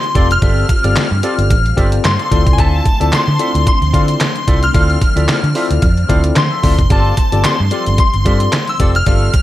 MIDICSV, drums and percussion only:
0, 0, Header, 1, 2, 480
1, 0, Start_track
1, 0, Key_signature, -1, "minor"
1, 0, Tempo, 540541
1, 372, Time_signature, 4, 2, 24, 8
1, 8367, End_track
2, 0, Start_track
2, 0, Title_t, "Drums"
2, 28, Note_on_c, 9, 42, 34
2, 117, Note_off_c, 9, 42, 0
2, 136, Note_on_c, 9, 36, 101
2, 136, Note_on_c, 9, 42, 89
2, 224, Note_off_c, 9, 36, 0
2, 224, Note_off_c, 9, 42, 0
2, 273, Note_on_c, 9, 42, 54
2, 362, Note_off_c, 9, 42, 0
2, 374, Note_on_c, 9, 36, 127
2, 375, Note_on_c, 9, 42, 95
2, 463, Note_off_c, 9, 36, 0
2, 463, Note_off_c, 9, 42, 0
2, 614, Note_on_c, 9, 36, 100
2, 614, Note_on_c, 9, 42, 90
2, 703, Note_off_c, 9, 36, 0
2, 703, Note_off_c, 9, 42, 0
2, 748, Note_on_c, 9, 42, 65
2, 837, Note_off_c, 9, 42, 0
2, 853, Note_on_c, 9, 39, 90
2, 856, Note_on_c, 9, 42, 108
2, 859, Note_on_c, 9, 38, 117
2, 942, Note_off_c, 9, 39, 0
2, 945, Note_off_c, 9, 42, 0
2, 948, Note_off_c, 9, 38, 0
2, 1093, Note_on_c, 9, 42, 78
2, 1182, Note_off_c, 9, 42, 0
2, 1231, Note_on_c, 9, 42, 61
2, 1320, Note_off_c, 9, 42, 0
2, 1336, Note_on_c, 9, 36, 120
2, 1336, Note_on_c, 9, 42, 92
2, 1425, Note_off_c, 9, 36, 0
2, 1425, Note_off_c, 9, 42, 0
2, 1472, Note_on_c, 9, 42, 37
2, 1561, Note_off_c, 9, 42, 0
2, 1575, Note_on_c, 9, 36, 100
2, 1578, Note_on_c, 9, 42, 79
2, 1664, Note_off_c, 9, 36, 0
2, 1667, Note_off_c, 9, 42, 0
2, 1706, Note_on_c, 9, 42, 67
2, 1795, Note_off_c, 9, 42, 0
2, 1815, Note_on_c, 9, 42, 79
2, 1816, Note_on_c, 9, 39, 91
2, 1822, Note_on_c, 9, 38, 117
2, 1904, Note_off_c, 9, 39, 0
2, 1904, Note_off_c, 9, 42, 0
2, 1910, Note_off_c, 9, 38, 0
2, 1949, Note_on_c, 9, 42, 38
2, 2037, Note_off_c, 9, 42, 0
2, 2056, Note_on_c, 9, 36, 100
2, 2058, Note_on_c, 9, 42, 81
2, 2145, Note_off_c, 9, 36, 0
2, 2147, Note_off_c, 9, 42, 0
2, 2189, Note_on_c, 9, 36, 100
2, 2190, Note_on_c, 9, 42, 52
2, 2278, Note_off_c, 9, 36, 0
2, 2279, Note_off_c, 9, 42, 0
2, 2294, Note_on_c, 9, 36, 123
2, 2295, Note_on_c, 9, 42, 93
2, 2383, Note_off_c, 9, 36, 0
2, 2383, Note_off_c, 9, 42, 0
2, 2535, Note_on_c, 9, 36, 102
2, 2535, Note_on_c, 9, 42, 87
2, 2624, Note_off_c, 9, 36, 0
2, 2624, Note_off_c, 9, 42, 0
2, 2671, Note_on_c, 9, 42, 61
2, 2760, Note_off_c, 9, 42, 0
2, 2774, Note_on_c, 9, 39, 81
2, 2777, Note_on_c, 9, 42, 102
2, 2780, Note_on_c, 9, 38, 114
2, 2863, Note_off_c, 9, 39, 0
2, 2865, Note_off_c, 9, 42, 0
2, 2869, Note_off_c, 9, 38, 0
2, 3014, Note_on_c, 9, 42, 78
2, 3102, Note_off_c, 9, 42, 0
2, 3154, Note_on_c, 9, 42, 61
2, 3242, Note_off_c, 9, 42, 0
2, 3257, Note_on_c, 9, 36, 124
2, 3258, Note_on_c, 9, 42, 94
2, 3345, Note_off_c, 9, 36, 0
2, 3347, Note_off_c, 9, 42, 0
2, 3393, Note_on_c, 9, 42, 37
2, 3481, Note_off_c, 9, 42, 0
2, 3495, Note_on_c, 9, 36, 95
2, 3499, Note_on_c, 9, 42, 76
2, 3584, Note_off_c, 9, 36, 0
2, 3588, Note_off_c, 9, 42, 0
2, 3624, Note_on_c, 9, 42, 66
2, 3713, Note_off_c, 9, 42, 0
2, 3732, Note_on_c, 9, 42, 80
2, 3733, Note_on_c, 9, 39, 97
2, 3739, Note_on_c, 9, 38, 112
2, 3821, Note_off_c, 9, 42, 0
2, 3822, Note_off_c, 9, 39, 0
2, 3828, Note_off_c, 9, 38, 0
2, 3868, Note_on_c, 9, 42, 38
2, 3957, Note_off_c, 9, 42, 0
2, 3975, Note_on_c, 9, 36, 101
2, 3976, Note_on_c, 9, 42, 84
2, 4064, Note_off_c, 9, 36, 0
2, 4065, Note_off_c, 9, 42, 0
2, 4108, Note_on_c, 9, 42, 54
2, 4197, Note_off_c, 9, 42, 0
2, 4213, Note_on_c, 9, 36, 119
2, 4214, Note_on_c, 9, 42, 91
2, 4302, Note_off_c, 9, 36, 0
2, 4302, Note_off_c, 9, 42, 0
2, 4349, Note_on_c, 9, 42, 39
2, 4438, Note_off_c, 9, 42, 0
2, 4453, Note_on_c, 9, 36, 105
2, 4454, Note_on_c, 9, 42, 88
2, 4542, Note_off_c, 9, 36, 0
2, 4543, Note_off_c, 9, 42, 0
2, 4589, Note_on_c, 9, 42, 58
2, 4678, Note_off_c, 9, 42, 0
2, 4692, Note_on_c, 9, 39, 80
2, 4694, Note_on_c, 9, 42, 106
2, 4698, Note_on_c, 9, 38, 109
2, 4781, Note_off_c, 9, 39, 0
2, 4783, Note_off_c, 9, 42, 0
2, 4787, Note_off_c, 9, 38, 0
2, 4831, Note_on_c, 9, 42, 37
2, 4919, Note_off_c, 9, 42, 0
2, 4930, Note_on_c, 9, 46, 74
2, 5019, Note_off_c, 9, 46, 0
2, 5066, Note_on_c, 9, 42, 62
2, 5155, Note_off_c, 9, 42, 0
2, 5170, Note_on_c, 9, 42, 99
2, 5172, Note_on_c, 9, 36, 114
2, 5259, Note_off_c, 9, 42, 0
2, 5261, Note_off_c, 9, 36, 0
2, 5305, Note_on_c, 9, 42, 37
2, 5394, Note_off_c, 9, 42, 0
2, 5411, Note_on_c, 9, 36, 92
2, 5413, Note_on_c, 9, 42, 81
2, 5500, Note_off_c, 9, 36, 0
2, 5502, Note_off_c, 9, 42, 0
2, 5539, Note_on_c, 9, 42, 67
2, 5628, Note_off_c, 9, 42, 0
2, 5646, Note_on_c, 9, 42, 76
2, 5647, Note_on_c, 9, 39, 86
2, 5653, Note_on_c, 9, 38, 117
2, 5735, Note_off_c, 9, 42, 0
2, 5736, Note_off_c, 9, 39, 0
2, 5742, Note_off_c, 9, 38, 0
2, 5892, Note_on_c, 9, 36, 101
2, 5892, Note_on_c, 9, 46, 85
2, 5981, Note_off_c, 9, 36, 0
2, 5981, Note_off_c, 9, 46, 0
2, 6025, Note_on_c, 9, 36, 93
2, 6026, Note_on_c, 9, 42, 52
2, 6114, Note_off_c, 9, 36, 0
2, 6115, Note_off_c, 9, 42, 0
2, 6130, Note_on_c, 9, 42, 98
2, 6131, Note_on_c, 9, 36, 126
2, 6219, Note_off_c, 9, 36, 0
2, 6219, Note_off_c, 9, 42, 0
2, 6368, Note_on_c, 9, 42, 86
2, 6371, Note_on_c, 9, 36, 101
2, 6457, Note_off_c, 9, 42, 0
2, 6459, Note_off_c, 9, 36, 0
2, 6503, Note_on_c, 9, 42, 62
2, 6592, Note_off_c, 9, 42, 0
2, 6608, Note_on_c, 9, 39, 89
2, 6610, Note_on_c, 9, 42, 104
2, 6614, Note_on_c, 9, 38, 115
2, 6697, Note_off_c, 9, 39, 0
2, 6699, Note_off_c, 9, 42, 0
2, 6703, Note_off_c, 9, 38, 0
2, 6847, Note_on_c, 9, 42, 73
2, 6936, Note_off_c, 9, 42, 0
2, 6983, Note_on_c, 9, 42, 59
2, 7072, Note_off_c, 9, 42, 0
2, 7088, Note_on_c, 9, 42, 97
2, 7091, Note_on_c, 9, 36, 122
2, 7176, Note_off_c, 9, 42, 0
2, 7179, Note_off_c, 9, 36, 0
2, 7224, Note_on_c, 9, 42, 38
2, 7313, Note_off_c, 9, 42, 0
2, 7331, Note_on_c, 9, 36, 92
2, 7333, Note_on_c, 9, 42, 79
2, 7420, Note_off_c, 9, 36, 0
2, 7422, Note_off_c, 9, 42, 0
2, 7460, Note_on_c, 9, 42, 67
2, 7549, Note_off_c, 9, 42, 0
2, 7569, Note_on_c, 9, 42, 79
2, 7570, Note_on_c, 9, 39, 85
2, 7576, Note_on_c, 9, 38, 105
2, 7658, Note_off_c, 9, 39, 0
2, 7658, Note_off_c, 9, 42, 0
2, 7664, Note_off_c, 9, 38, 0
2, 7703, Note_on_c, 9, 42, 37
2, 7792, Note_off_c, 9, 42, 0
2, 7811, Note_on_c, 9, 42, 86
2, 7813, Note_on_c, 9, 36, 99
2, 7900, Note_off_c, 9, 42, 0
2, 7901, Note_off_c, 9, 36, 0
2, 7948, Note_on_c, 9, 42, 54
2, 8036, Note_off_c, 9, 42, 0
2, 8049, Note_on_c, 9, 42, 91
2, 8051, Note_on_c, 9, 36, 122
2, 8137, Note_off_c, 9, 42, 0
2, 8140, Note_off_c, 9, 36, 0
2, 8291, Note_on_c, 9, 42, 90
2, 8292, Note_on_c, 9, 36, 105
2, 8367, Note_off_c, 9, 36, 0
2, 8367, Note_off_c, 9, 42, 0
2, 8367, End_track
0, 0, End_of_file